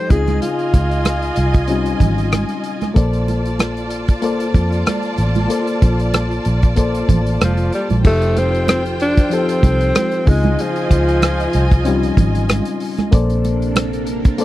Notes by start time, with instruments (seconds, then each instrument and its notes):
Already playing: reed electric piano F3 D#4 G4 A4, alto saxophone C5
0.09 fingered electric bass C#2, reed electric piano C#3 C4 D#4 F4 G#4, string section F4 D#5 G#5, alto saxophone G#4, kick, closed hi-hat
0.27 cross-stick, closed hi-hat, high conga
0.42 alto saxophone F4, closed hi-hat, muted conga
0.59 closed hi-hat
0.74 fingered electric bass C#2, kick, closed hi-hat, muted conga
0.91 closed hi-hat
1.05 cross-stick, closed hi-hat, high conga
1.22 closed hi-hat
1.36 fingered electric bass C2, closed hi-hat
1.54 kick, closed hi-hat
1.68 reed electric piano G3 C4 C#4 D#4 F4, closed hi-hat
1.86 closed hi-hat
2.00 fingered electric bass G#1, kick, closed hi-hat, muted conga, low conga
2.18 closed hi-hat
2.32 cross-stick, closed hi-hat, high conga
2.49 closed hi-hat
2.64 closed hi-hat
2.81 cross-stick, closed hi-hat, high conga
2.94 fingered electric bass A#1, reed electric piano A#3 A4 C5 D5, string section F4 D5 A5, kick, closed hi-hat, muted conga
3.13 closed hi-hat
3.28 closed hi-hat, muted conga
3.45 closed hi-hat
3.59 cross-stick, closed hi-hat, high conga
3.77 closed hi-hat
3.90 closed hi-hat
4.08 kick, closed hi-hat
4.22 reed electric piano A#3 A4 C5 D5, closed hi-hat, muted conga
4.40 closed hi-hat
4.54 fingered electric bass F2, kick, closed hi-hat, muted conga
4.72 closed hi-hat
4.86 cross-stick, closed hi-hat, high conga
5.03 closed hi-hat
5.18 fingered electric bass A1, closed hi-hat
5.35 closed hi-hat, high conga
5.49 reed electric piano A#3 A4 C5 D5, closed hi-hat, muted conga
5.67 closed hi-hat
5.82 fingered electric bass A#1, kick, closed hi-hat, muted conga
6.00 closed hi-hat
6.14 cross-stick, closed hi-hat, high conga
6.31 closed hi-hat
6.45 fingered electric bass A#1, closed hi-hat
6.62 kick, closed hi-hat
6.76 reed electric piano A#3 A4 C5 D5, kick, closed hi-hat
6.95 closed hi-hat
7.09 fingered electric bass A1, kick, closed hi-hat, muted conga, low conga
7.26 closed hi-hat
7.41 fingered electric bass F1, alto saxophone F3, cross-stick, closed hi-hat, high conga
7.57 closed hi-hat
7.73 alto saxophone G3, closed hi-hat
7.90 fingered electric bass A#1, closed hi-hat, high conga
8.03 fingered electric bass F1, reed electric piano F3 D#4 G4 A4, string section F4 C5 G5, kick, crash, muted conga
8.07 alto saxophone A3
8.22 closed hi-hat
8.37 alto saxophone C4, closed hi-hat, muted conga
8.54 closed hi-hat
8.68 alto saxophone C4, cross-stick, closed hi-hat, high conga
8.86 closed hi-hat
9.00 alto saxophone D4, closed hi-hat
9.17 kick, closed hi-hat
9.30 reed electric piano F3 D#4 G4 A4, alto saxophone C4, closed hi-hat
9.49 closed hi-hat
9.63 fingered electric bass C2, kick, closed hi-hat, muted conga
9.81 closed hi-hat
9.95 cross-stick, closed hi-hat, high conga
10.11 closed hi-hat
10.26 fingered electric bass C#2, reed electric piano C#3 C4 D#4 F4 G#4, alto saxophone G#3, string section F4 D#5 G#5, kick, open hi-hat
10.44 closed hi-hat, high conga
10.59 alto saxophone F3, closed hi-hat, muted conga
10.76 closed hi-hat
10.91 fingered electric bass C#2, kick, closed hi-hat, muted conga
11.09 closed hi-hat
11.22 cross-stick, closed hi-hat, high conga
11.40 closed hi-hat
11.53 fingered electric bass C2, closed hi-hat
11.71 kick, closed hi-hat
11.85 reed electric piano G3 C4 C#4 D#4 F4, closed hi-hat
12.03 closed hi-hat
12.17 fingered electric bass G#1, kick, closed hi-hat, muted conga, low conga
12.35 closed hi-hat
12.49 cross-stick, closed hi-hat, high conga
12.65 closed hi-hat
12.80 open hi-hat
12.98 cross-stick, closed hi-hat, high conga
13.11 fingered electric bass A#1, string machine C3 A#3 D4 A4, reed electric piano A#3 A4 C5 D5, kick, closed hi-hat, muted conga
13.30 closed hi-hat
13.45 closed hi-hat, muted conga
13.62 closed hi-hat
13.76 cross-stick, closed hi-hat, high conga
13.93 closed hi-hat
14.07 closed hi-hat
14.25 kick, closed hi-hat
14.38 reed electric piano A#3 A4 C5 D5, string section F4 D5 A5, closed hi-hat, muted conga